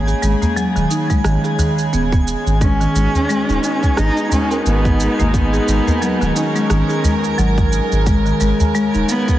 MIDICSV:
0, 0, Header, 1, 8, 480
1, 0, Start_track
1, 0, Key_signature, 5, "minor"
1, 0, Tempo, 681818
1, 1836, Time_signature, 4, 2, 24, 8
1, 6609, End_track
2, 0, Start_track
2, 0, Title_t, "Synth texture"
2, 0, Program_c, 0, 99
2, 0, Note_on_c, 0, 80, 76
2, 1831, Note_off_c, 0, 80, 0
2, 1840, Note_on_c, 0, 80, 81
2, 6609, Note_off_c, 0, 80, 0
2, 6609, End_track
3, 0, Start_track
3, 0, Title_t, "Cello"
3, 0, Program_c, 1, 42
3, 1840, Note_on_c, 1, 61, 103
3, 2802, Note_on_c, 1, 63, 108
3, 2813, Note_off_c, 1, 61, 0
3, 3039, Note_off_c, 1, 63, 0
3, 3044, Note_on_c, 1, 61, 97
3, 3264, Note_off_c, 1, 61, 0
3, 3288, Note_on_c, 1, 59, 92
3, 3661, Note_on_c, 1, 58, 86
3, 3671, Note_off_c, 1, 59, 0
3, 3764, Note_on_c, 1, 59, 96
3, 3774, Note_off_c, 1, 58, 0
3, 4484, Note_on_c, 1, 61, 87
3, 4494, Note_off_c, 1, 59, 0
3, 5200, Note_off_c, 1, 61, 0
3, 6395, Note_on_c, 1, 59, 103
3, 6609, Note_off_c, 1, 59, 0
3, 6609, End_track
4, 0, Start_track
4, 0, Title_t, "Marimba"
4, 0, Program_c, 2, 12
4, 53, Note_on_c, 2, 68, 68
4, 151, Note_off_c, 2, 68, 0
4, 156, Note_on_c, 2, 56, 72
4, 279, Note_off_c, 2, 56, 0
4, 294, Note_on_c, 2, 58, 71
4, 386, Note_off_c, 2, 58, 0
4, 397, Note_on_c, 2, 54, 99
4, 519, Note_off_c, 2, 54, 0
4, 533, Note_on_c, 2, 51, 73
4, 592, Note_off_c, 2, 51, 0
4, 637, Note_on_c, 2, 63, 69
4, 760, Note_off_c, 2, 63, 0
4, 774, Note_on_c, 2, 56, 74
4, 866, Note_off_c, 2, 56, 0
4, 878, Note_on_c, 2, 51, 75
4, 955, Note_off_c, 2, 51, 0
4, 1015, Note_on_c, 2, 68, 65
4, 1073, Note_off_c, 2, 68, 0
4, 1118, Note_on_c, 2, 51, 67
4, 1240, Note_off_c, 2, 51, 0
4, 1359, Note_on_c, 2, 59, 73
4, 1435, Note_off_c, 2, 59, 0
4, 1495, Note_on_c, 2, 59, 70
4, 1587, Note_off_c, 2, 59, 0
4, 1839, Note_on_c, 2, 56, 75
4, 1961, Note_off_c, 2, 56, 0
4, 1974, Note_on_c, 2, 51, 65
4, 2032, Note_off_c, 2, 51, 0
4, 2079, Note_on_c, 2, 56, 70
4, 2307, Note_off_c, 2, 56, 0
4, 2318, Note_on_c, 2, 56, 100
4, 2440, Note_off_c, 2, 56, 0
4, 2456, Note_on_c, 2, 63, 73
4, 2921, Note_off_c, 2, 63, 0
4, 2934, Note_on_c, 2, 68, 66
4, 3032, Note_off_c, 2, 68, 0
4, 3038, Note_on_c, 2, 56, 69
4, 3160, Note_off_c, 2, 56, 0
4, 3173, Note_on_c, 2, 70, 69
4, 3639, Note_off_c, 2, 70, 0
4, 3654, Note_on_c, 2, 58, 73
4, 3752, Note_off_c, 2, 58, 0
4, 3893, Note_on_c, 2, 68, 74
4, 3991, Note_off_c, 2, 68, 0
4, 3997, Note_on_c, 2, 56, 67
4, 4119, Note_off_c, 2, 56, 0
4, 4134, Note_on_c, 2, 58, 68
4, 4226, Note_off_c, 2, 58, 0
4, 4236, Note_on_c, 2, 54, 102
4, 4359, Note_off_c, 2, 54, 0
4, 4373, Note_on_c, 2, 51, 71
4, 4432, Note_off_c, 2, 51, 0
4, 4476, Note_on_c, 2, 63, 64
4, 4599, Note_off_c, 2, 63, 0
4, 4613, Note_on_c, 2, 56, 68
4, 4706, Note_off_c, 2, 56, 0
4, 4715, Note_on_c, 2, 51, 79
4, 4794, Note_off_c, 2, 51, 0
4, 4852, Note_on_c, 2, 68, 67
4, 4911, Note_off_c, 2, 68, 0
4, 4957, Note_on_c, 2, 56, 71
4, 5186, Note_off_c, 2, 56, 0
4, 5195, Note_on_c, 2, 54, 96
4, 5665, Note_off_c, 2, 54, 0
4, 5676, Note_on_c, 2, 56, 75
4, 5799, Note_off_c, 2, 56, 0
4, 5812, Note_on_c, 2, 51, 68
4, 5871, Note_off_c, 2, 51, 0
4, 5918, Note_on_c, 2, 56, 75
4, 6147, Note_off_c, 2, 56, 0
4, 6156, Note_on_c, 2, 56, 102
4, 6279, Note_off_c, 2, 56, 0
4, 6293, Note_on_c, 2, 63, 72
4, 6609, Note_off_c, 2, 63, 0
4, 6609, End_track
5, 0, Start_track
5, 0, Title_t, "String section"
5, 0, Program_c, 3, 48
5, 0, Note_on_c, 3, 49, 67
5, 0, Note_on_c, 3, 56, 76
5, 0, Note_on_c, 3, 68, 79
5, 1835, Note_on_c, 3, 47, 81
5, 1837, Note_off_c, 3, 49, 0
5, 2035, Note_on_c, 3, 63, 75
5, 3388, Note_off_c, 3, 68, 0
5, 3573, Note_on_c, 3, 70, 77
5, 5673, Note_on_c, 3, 49, 72
5, 5676, Note_off_c, 3, 47, 0
5, 5677, Note_off_c, 3, 63, 0
5, 6609, Note_off_c, 3, 49, 0
5, 6609, Note_off_c, 3, 56, 0
5, 6609, Note_off_c, 3, 70, 0
5, 6609, End_track
6, 0, Start_track
6, 0, Title_t, "Sub bass"
6, 0, Program_c, 4, 38
6, 0, Note_on_c, 4, 32, 85
6, 92, Note_off_c, 4, 32, 0
6, 158, Note_on_c, 4, 32, 87
6, 241, Note_off_c, 4, 32, 0
6, 534, Note_on_c, 4, 27, 100
6, 597, Note_off_c, 4, 27, 0
6, 876, Note_on_c, 4, 32, 83
6, 960, Note_off_c, 4, 32, 0
6, 1360, Note_on_c, 4, 27, 80
6, 1651, Note_off_c, 4, 27, 0
6, 1733, Note_on_c, 4, 32, 80
6, 2013, Note_off_c, 4, 32, 0
6, 2077, Note_on_c, 4, 32, 86
6, 2161, Note_off_c, 4, 32, 0
6, 2456, Note_on_c, 4, 27, 98
6, 2518, Note_off_c, 4, 27, 0
6, 2802, Note_on_c, 4, 32, 85
6, 2883, Note_off_c, 4, 32, 0
6, 3279, Note_on_c, 4, 32, 73
6, 3570, Note_off_c, 4, 32, 0
6, 3654, Note_on_c, 4, 32, 89
6, 3933, Note_off_c, 4, 32, 0
6, 3995, Note_on_c, 4, 32, 86
6, 4080, Note_off_c, 4, 32, 0
6, 4373, Note_on_c, 4, 27, 100
6, 4437, Note_off_c, 4, 27, 0
6, 4716, Note_on_c, 4, 32, 86
6, 4800, Note_off_c, 4, 32, 0
6, 5196, Note_on_c, 4, 32, 75
6, 5489, Note_off_c, 4, 32, 0
6, 5575, Note_on_c, 4, 32, 89
6, 5854, Note_off_c, 4, 32, 0
6, 5916, Note_on_c, 4, 32, 90
6, 6000, Note_off_c, 4, 32, 0
6, 6296, Note_on_c, 4, 27, 95
6, 6358, Note_off_c, 4, 27, 0
6, 6609, End_track
7, 0, Start_track
7, 0, Title_t, "Udu"
7, 294, Note_on_c, 9, 64, 75
7, 364, Note_off_c, 9, 64, 0
7, 1113, Note_on_c, 9, 64, 83
7, 1183, Note_off_c, 9, 64, 0
7, 2214, Note_on_c, 9, 64, 89
7, 2284, Note_off_c, 9, 64, 0
7, 3036, Note_on_c, 9, 64, 91
7, 3107, Note_off_c, 9, 64, 0
7, 3652, Note_on_c, 9, 64, 94
7, 3722, Note_off_c, 9, 64, 0
7, 4133, Note_on_c, 9, 64, 85
7, 4203, Note_off_c, 9, 64, 0
7, 4956, Note_on_c, 9, 64, 91
7, 5026, Note_off_c, 9, 64, 0
7, 6055, Note_on_c, 9, 64, 99
7, 6126, Note_off_c, 9, 64, 0
7, 6609, End_track
8, 0, Start_track
8, 0, Title_t, "Drums"
8, 56, Note_on_c, 9, 82, 20
8, 126, Note_off_c, 9, 82, 0
8, 161, Note_on_c, 9, 82, 70
8, 231, Note_off_c, 9, 82, 0
8, 298, Note_on_c, 9, 82, 29
8, 368, Note_off_c, 9, 82, 0
8, 401, Note_on_c, 9, 82, 40
8, 471, Note_off_c, 9, 82, 0
8, 538, Note_on_c, 9, 82, 19
8, 608, Note_off_c, 9, 82, 0
8, 639, Note_on_c, 9, 82, 66
8, 710, Note_off_c, 9, 82, 0
8, 775, Note_on_c, 9, 36, 50
8, 776, Note_on_c, 9, 82, 32
8, 845, Note_off_c, 9, 36, 0
8, 846, Note_off_c, 9, 82, 0
8, 876, Note_on_c, 9, 37, 74
8, 879, Note_on_c, 9, 82, 39
8, 947, Note_off_c, 9, 37, 0
8, 950, Note_off_c, 9, 82, 0
8, 1017, Note_on_c, 9, 82, 20
8, 1087, Note_off_c, 9, 82, 0
8, 1121, Note_on_c, 9, 82, 70
8, 1191, Note_off_c, 9, 82, 0
8, 1257, Note_on_c, 9, 82, 29
8, 1327, Note_off_c, 9, 82, 0
8, 1361, Note_on_c, 9, 82, 42
8, 1432, Note_off_c, 9, 82, 0
8, 1496, Note_on_c, 9, 36, 101
8, 1498, Note_on_c, 9, 82, 20
8, 1566, Note_off_c, 9, 36, 0
8, 1569, Note_off_c, 9, 82, 0
8, 1602, Note_on_c, 9, 82, 70
8, 1672, Note_off_c, 9, 82, 0
8, 1739, Note_on_c, 9, 82, 29
8, 1809, Note_off_c, 9, 82, 0
8, 1839, Note_on_c, 9, 36, 106
8, 1840, Note_on_c, 9, 82, 44
8, 1909, Note_off_c, 9, 36, 0
8, 1911, Note_off_c, 9, 82, 0
8, 1978, Note_on_c, 9, 82, 23
8, 2049, Note_off_c, 9, 82, 0
8, 2082, Note_on_c, 9, 82, 69
8, 2152, Note_off_c, 9, 82, 0
8, 2219, Note_on_c, 9, 82, 30
8, 2290, Note_off_c, 9, 82, 0
8, 2322, Note_on_c, 9, 82, 41
8, 2392, Note_off_c, 9, 82, 0
8, 2459, Note_on_c, 9, 82, 20
8, 2530, Note_off_c, 9, 82, 0
8, 2560, Note_on_c, 9, 82, 66
8, 2631, Note_off_c, 9, 82, 0
8, 2696, Note_on_c, 9, 36, 54
8, 2698, Note_on_c, 9, 82, 32
8, 2766, Note_off_c, 9, 36, 0
8, 2768, Note_off_c, 9, 82, 0
8, 2797, Note_on_c, 9, 37, 76
8, 2800, Note_on_c, 9, 82, 42
8, 2867, Note_off_c, 9, 37, 0
8, 2870, Note_off_c, 9, 82, 0
8, 2936, Note_on_c, 9, 82, 22
8, 3007, Note_off_c, 9, 82, 0
8, 3040, Note_on_c, 9, 82, 75
8, 3111, Note_off_c, 9, 82, 0
8, 3177, Note_on_c, 9, 82, 30
8, 3247, Note_off_c, 9, 82, 0
8, 3282, Note_on_c, 9, 82, 44
8, 3352, Note_off_c, 9, 82, 0
8, 3416, Note_on_c, 9, 36, 104
8, 3419, Note_on_c, 9, 82, 21
8, 3486, Note_off_c, 9, 36, 0
8, 3489, Note_off_c, 9, 82, 0
8, 3520, Note_on_c, 9, 82, 77
8, 3591, Note_off_c, 9, 82, 0
8, 3658, Note_on_c, 9, 82, 32
8, 3728, Note_off_c, 9, 82, 0
8, 3759, Note_on_c, 9, 36, 109
8, 3761, Note_on_c, 9, 82, 46
8, 3829, Note_off_c, 9, 36, 0
8, 3831, Note_off_c, 9, 82, 0
8, 3898, Note_on_c, 9, 82, 22
8, 3968, Note_off_c, 9, 82, 0
8, 4000, Note_on_c, 9, 82, 75
8, 4071, Note_off_c, 9, 82, 0
8, 4138, Note_on_c, 9, 82, 31
8, 4208, Note_off_c, 9, 82, 0
8, 4240, Note_on_c, 9, 82, 44
8, 4311, Note_off_c, 9, 82, 0
8, 4376, Note_on_c, 9, 82, 20
8, 4447, Note_off_c, 9, 82, 0
8, 4480, Note_on_c, 9, 82, 74
8, 4550, Note_off_c, 9, 82, 0
8, 4616, Note_on_c, 9, 82, 33
8, 4686, Note_off_c, 9, 82, 0
8, 4716, Note_on_c, 9, 37, 76
8, 4719, Note_on_c, 9, 82, 44
8, 4786, Note_off_c, 9, 37, 0
8, 4790, Note_off_c, 9, 82, 0
8, 4856, Note_on_c, 9, 82, 22
8, 4926, Note_off_c, 9, 82, 0
8, 4960, Note_on_c, 9, 82, 74
8, 5030, Note_off_c, 9, 82, 0
8, 5097, Note_on_c, 9, 82, 30
8, 5168, Note_off_c, 9, 82, 0
8, 5199, Note_on_c, 9, 82, 46
8, 5270, Note_off_c, 9, 82, 0
8, 5335, Note_on_c, 9, 36, 108
8, 5336, Note_on_c, 9, 82, 22
8, 5405, Note_off_c, 9, 36, 0
8, 5406, Note_off_c, 9, 82, 0
8, 5439, Note_on_c, 9, 82, 74
8, 5509, Note_off_c, 9, 82, 0
8, 5577, Note_on_c, 9, 82, 32
8, 5647, Note_off_c, 9, 82, 0
8, 5678, Note_on_c, 9, 36, 117
8, 5679, Note_on_c, 9, 82, 45
8, 5749, Note_off_c, 9, 36, 0
8, 5749, Note_off_c, 9, 82, 0
8, 5816, Note_on_c, 9, 82, 24
8, 5886, Note_off_c, 9, 82, 0
8, 5917, Note_on_c, 9, 82, 78
8, 5988, Note_off_c, 9, 82, 0
8, 6056, Note_on_c, 9, 82, 33
8, 6126, Note_off_c, 9, 82, 0
8, 6160, Note_on_c, 9, 82, 44
8, 6230, Note_off_c, 9, 82, 0
8, 6296, Note_on_c, 9, 82, 20
8, 6366, Note_off_c, 9, 82, 0
8, 6399, Note_on_c, 9, 82, 79
8, 6470, Note_off_c, 9, 82, 0
8, 6535, Note_on_c, 9, 36, 57
8, 6536, Note_on_c, 9, 82, 35
8, 6605, Note_off_c, 9, 36, 0
8, 6606, Note_off_c, 9, 82, 0
8, 6609, End_track
0, 0, End_of_file